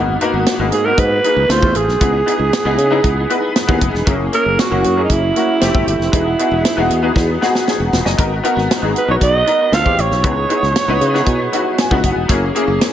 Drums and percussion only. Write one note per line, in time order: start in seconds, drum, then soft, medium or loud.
0.21 closed hi-hat medium
0.46 snare loud
0.46 closed hi-hat medium
0.72 closed hi-hat medium
0.98 kick medium
0.98 closed hi-hat medium
1.24 closed hi-hat medium
1.50 snare medium
1.50 closed hi-hat medium
1.62 kick medium
1.75 closed hi-hat medium
1.89 snare soft
2.01 kick loud
2.01 closed hi-hat medium
2.28 closed hi-hat medium
2.53 snare loud
2.53 closed hi-hat medium
2.78 closed hi-hat medium
3.04 kick medium
3.04 closed hi-hat medium
3.30 closed hi-hat medium
3.56 snare medium
3.56 closed hi-hat medium
3.69 kick medium
3.81 kick medium
3.81 closed hi-hat medium
3.95 snare soft
4.07 kick loud
4.07 closed hi-hat medium
4.33 closed hi-hat medium
4.59 snare loud
4.59 closed hi-hat medium
4.84 closed hi-hat medium
5.10 kick medium
5.10 closed hi-hat medium
5.36 closed hi-hat medium
5.61 snare medium
5.61 closed hi-hat medium
5.75 kick medium
5.88 closed hi-hat medium
6.01 snare soft
6.13 kick medium
6.13 closed hi-hat medium
6.39 closed hi-hat medium
6.65 snare loud
6.65 closed hi-hat medium
6.90 closed hi-hat medium
7.16 kick medium
7.16 snare soft
7.42 snare medium
7.55 snare medium
7.68 snare medium
7.93 snare medium
8.06 snare medium
8.19 kick loud
8.19 closed hi-hat medium
8.45 closed hi-hat medium
8.58 snare soft
8.71 snare loud
8.71 closed hi-hat medium
8.96 closed hi-hat medium
9.21 kick medium
9.21 closed hi-hat medium
9.47 closed hi-hat medium
9.73 snare medium
9.73 closed hi-hat medium
9.86 kick medium
9.98 closed hi-hat medium
10.11 snare soft
10.24 kick loud
10.24 closed hi-hat medium
10.50 closed hi-hat medium
10.63 snare soft
10.76 snare loud
10.76 closed hi-hat medium
11.01 closed hi-hat medium
11.15 snare soft
11.26 kick medium
11.26 closed hi-hat medium
11.53 closed hi-hat medium
11.78 snare medium
11.78 closed hi-hat medium
11.91 kick medium
12.03 kick medium
12.03 closed hi-hat medium
12.29 kick loud
12.29 closed hi-hat medium
12.56 closed hi-hat medium
12.81 snare loud
12.81 closed hi-hat medium